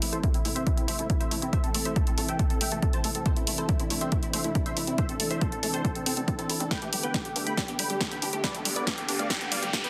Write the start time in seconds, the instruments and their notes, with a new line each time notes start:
0.02 analog synth bass A1, analog synth pad C3 E3 A3 E4, acid bass A3, supersaw synth E4, open hi-hat
0.13 analog synth bass A1, acid bass E4, supersaw synth A4 C5, closed hi-hat
0.23 analog synth pad C3 E3 A3 E4, acid bass A3, supersaw synth E4, kick, closed hi-hat
0.34 analog synth bass A1, acid bass C4, supersaw synth E4, closed hi-hat
0.45 analog synth bass A2, analog synth pad C3 E3 A3 E4, acid bass A3, supersaw synth E4, open hi-hat
0.55 analog synth bass A1, acid bass C4, supersaw synth C5 E5, closed hi-hat
0.66 acid bass A3, supersaw synth E4, kick, closed hi-hat
0.77 analog synth bass A1, analog synth pad C3 E3 A3 E4, acid bass C4, supersaw synth E4, closed hi-hat
0.88 analog synth bass A1, acid bass A3, supersaw synth C5 E5, open hi-hat
0.99 analog synth bass A1, analog synth pad C3 E3 A3 E4, acid bass A3, supersaw synth E4, closed hi-hat
1.10 analog synth pad C3 E3 A3 E4, acid bass A3, supersaw synth E4, kick, closed hi-hat
1.20 analog synth bass G1, acid bass E4, supersaw synth C5 E5, closed hi-hat
1.31 analog synth bass A1, acid bass A3, supersaw synth E4, open hi-hat
1.42 analog synth bass A1, analog synth pad C3 E3 A3 E4, acid bass C4, supersaw synth E4, closed hi-hat
1.53 analog synth pad C3 E3 A3 E4, acid bass A3, supersaw synth C5 E5, kick, closed hi-hat
1.64 analog synth bass A1, analog synth pad C3 E3 A3 E4, acid bass C4, supersaw synth A4, closed hi-hat
1.74 analog synth bass A1, analog synth pad C3 E3 A3 E4, acid bass A3, supersaw synth A4, open hi-hat
1.85 analog synth bass A1, acid bass E4, supersaw synth C5 E5, closed hi-hat
1.96 analog synth pad C3 E3 A3 E4, acid bass A3, supersaw synth A4, kick, closed hi-hat
2.07 analog synth bass A1, acid bass C4, supersaw synth A4, closed hi-hat
2.18 analog synth bass A2, analog synth pad C3 E3 A3 E4, acid bass A3, supersaw synth A4, open hi-hat
2.28 analog synth bass A1, acid bass C4, supersaw synth E5 G5, closed hi-hat
2.39 acid bass A3, supersaw synth A4, kick, closed hi-hat
2.50 analog synth bass A1, analog synth pad C3 E3 A3 E4, acid bass C4, supersaw synth A4, closed hi-hat
2.61 analog synth bass A1, acid bass A3, supersaw synth E5 G5, open hi-hat
2.72 analog synth bass A1, analog synth pad C3 E3 A3 E4, acid bass A3, supersaw synth A4, closed hi-hat
2.82 analog synth pad C3 E3 A3 E4, acid bass A3, supersaw synth A4, kick, closed hi-hat
2.93 analog synth bass G1, acid bass E4, supersaw synth C5 A5, closed hi-hat
3.04 analog synth bass A1, acid bass A3, supersaw synth A4, open hi-hat
3.15 analog synth bass A1, analog synth pad C3 E3 A3 E4, acid bass C4, supersaw synth A4, closed hi-hat
3.26 analog synth pad C3 E3 A3 D4, acid bass A3, supersaw synth A4 C5, kick, closed hi-hat
3.36 analog synth bass A1, analog synth pad C3 E3 A3 D4, acid bass C4, supersaw synth E4, closed hi-hat
3.47 analog synth bass A1, analog synth pad C3 E3 A3 D4, acid bass A3, supersaw synth E4, open hi-hat
3.58 analog synth bass A1, acid bass E4, supersaw synth A4 C5, closed hi-hat
3.69 analog synth pad C3 E3 A3 D4, acid bass A3, supersaw synth E4, kick, closed hi-hat
3.80 analog synth bass A1, acid bass C4, supersaw synth E4, closed hi-hat
3.90 analog synth bass A2, analog synth pad C3 E3 A3 D4, acid bass A3, supersaw synth E4, open hi-hat
4.01 analog synth bass A1, acid bass C4, supersaw synth C5 E5, closed hi-hat
4.12 acid bass A3, supersaw synth E4, kick, closed hi-hat
4.23 analog synth bass A1, analog synth pad C3 E3 A3 D4, acid bass C4, supersaw synth E4, closed hi-hat
4.33 analog synth bass A1, acid bass A3, supersaw synth C5 E5, open hi-hat
4.44 analog synth bass A1, analog synth pad C3 E3 A3 D4, acid bass A3, supersaw synth E4, closed hi-hat
4.55 analog synth pad C3 E3 A3 D4, acid bass A3, supersaw synth E4, kick, closed hi-hat
4.66 analog synth bass G1, acid bass E4, supersaw synth C5 E5, closed hi-hat
4.77 analog synth bass A1, acid bass A3, supersaw synth E4, open hi-hat
4.87 analog synth bass A1, analog synth pad C3 E3 A3 D4, acid bass C4, supersaw synth E4, closed hi-hat
4.98 analog synth pad C3 E3 A3 D4, acid bass A3, supersaw synth C5 E5, kick, closed hi-hat
5.09 analog synth bass A1, analog synth pad C3 E3 A3 D4, acid bass C4, supersaw synth A4, closed hi-hat
5.20 analog synth bass A1, analog synth pad C3 E3 A3 D4, acid bass A3, supersaw synth A4, open hi-hat
5.31 analog synth bass A1, acid bass E4, supersaw synth C5 E5, closed hi-hat
5.41 analog synth pad C3 E3 A3 D4, acid bass A3, supersaw synth A4, kick, closed hi-hat
5.52 analog synth bass A1, acid bass C4, supersaw synth A4, closed hi-hat
5.63 analog synth bass A2, analog synth pad C3 E3 A3 D4, acid bass A3, supersaw synth A4, open hi-hat
5.73 analog synth bass A1, acid bass C4, supersaw synth A4 C5, closed hi-hat
5.84 acid bass A3, supersaw synth A4, kick, closed hi-hat
5.95 analog synth bass A1, analog synth pad C3 E3 A3 D4, acid bass C4, supersaw synth A4, closed hi-hat
6.06 analog synth bass A1, supersaw synth C4 A4, acid bass C4, open hi-hat
6.17 analog synth bass A1, analog synth pad C3 E3 A3 D4, acid bass C4, supersaw synth A4, closed hi-hat
6.28 analog synth pad C3 E3 A3 D4, acid bass C4, supersaw synth A4, kick, closed hi-hat
6.39 analog synth bass A1, supersaw synth C4 A4, acid bass E4, closed hi-hat
6.49 analog synth bass A1, acid bass E4, supersaw synth A4, open hi-hat
6.60 analog synth bass A2, analog synth pad C3 E3 A3 D4, acid bass C4, supersaw synth A4, closed hi-hat
6.71 analog synth pad D3 A3 B3 G4, acid bass G3, supersaw synth B4 G5, kick, snare, closed hi-hat, riser
6.82 analog synth bass G1, analog synth pad D3 A3 B3 G4, acid bass A3, supersaw synth G4, closed hi-hat
6.93 analog synth bass G1, analog synth pad D3 A3 B3 G4, acid bass G3, supersaw synth G4, open hi-hat
7.03 analog synth bass G1, acid bass B3, supersaw synth B4 G5, closed hi-hat
7.14 analog synth pad D3 A3 B3 G4, acid bass D4, supersaw synth G4, kick, snare, closed hi-hat
7.25 analog synth bass G1, acid bass G4, supersaw synth G4, closed hi-hat
7.36 analog synth bass G2, analog synth pad D3 A3 B3 G4, acid bass D4, supersaw synth G4, open hi-hat
7.47 analog synth bass G1, acid bass A3, supersaw synth G5 B5, closed hi-hat
7.57 acid bass G3, supersaw synth G4, kick, snare, closed hi-hat
7.68 analog synth bass G1, analog synth pad D3 A3 B3 G4, acid bass B3, supersaw synth G4, closed hi-hat
7.79 analog synth bass G1, acid bass G3, supersaw synth G5 B5, open hi-hat
7.90 analog synth bass G1, analog synth pad D3 A3 B3 G4, acid bass G3, supersaw synth G4, closed hi-hat
8.01 analog synth pad D3 A3 B3 G4, acid bass D4, supersaw synth G4, kick, snare, closed hi-hat
8.11 analog synth bass F1, acid bass B3, supersaw synth G5 B5, closed hi-hat
8.22 analog synth bass G1, acid bass D4, supersaw synth G4, open hi-hat
8.33 analog synth bass G1, analog synth pad D3 A3 B3 G4, acid bass A3, supersaw synth G4, closed hi-hat
8.44 analog synth pad D3 A3 B3 G4, acid bass G3, supersaw synth B4 D5, kick, snare, closed hi-hat
8.55 analog synth bass G1, analog synth pad D3 A3 B3 G4, acid bass A3, supersaw synth G4, closed hi-hat
8.65 analog synth bass G1, analog synth pad D3 A3 B3 G4, acid bass G3, supersaw synth G4, open hi-hat
8.76 analog synth bass G1, acid bass B3, supersaw synth B4 D5, closed hi-hat
8.87 analog synth pad D3 A3 B3 G4, acid bass D4, supersaw synth G4, kick, snare, closed hi-hat
8.98 analog synth bass G1, supersaw synth G4, acid bass G4, closed hi-hat
9.08 analog synth bass G2, analog synth pad D3 A3 B3 G4, acid bass D4, supersaw synth G4, open hi-hat
9.19 analog synth bass G1, acid bass A3, supersaw synth D5 F5, closed hi-hat
9.30 acid bass G3, supersaw synth G4, kick, snare, closed hi-hat
9.41 analog synth bass G1, analog synth pad D3 A3 B3 G4, acid bass B3, supersaw synth G4, closed hi-hat
9.52 analog synth bass G1, acid bass G3, supersaw synth D5 F5, open hi-hat
9.62 analog synth bass G1, analog synth pad D3 A3 B3 G4, acid bass G3, supersaw synth G4, closed hi-hat
9.73 analog synth pad D3 A3 B3 G4, acid bass D4, supersaw synth G4, kick, snare, closed hi-hat
9.84 analog synth bass F1, acid bass B3, supersaw synth B4 G5, closed hi-hat